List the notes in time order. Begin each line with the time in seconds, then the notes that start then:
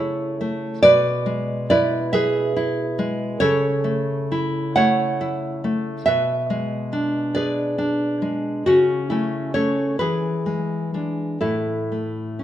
Already playing: C#3 A3 A4 C#5
0.00 E4
0.41 A3
0.83 B2 B4 D5
1.26 G#3
1.70 E4 B4 D5
2.13 G#4 B4 E5
2.56 E4
2.99 G#3
3.40 C#3 A4 C#5
3.84 A3
4.32 E4
4.76 A3 C#5 F#5
5.21 E4
5.64 A3
6.06 B2 B4 E5
6.50 G#3
6.93 D4
7.35 G#4 B4 D5
7.78 D4
8.22 G#3
8.66 C#3 C#4 F#4
9.10 A3 C#4 E4
9.54 A3 C#4 A4 C#5
9.99 E3 G#4 B4
10.46 G#3
10.94 G#3 D4
11.41 A2 E4 A4
11.92 A3
12.39 C#4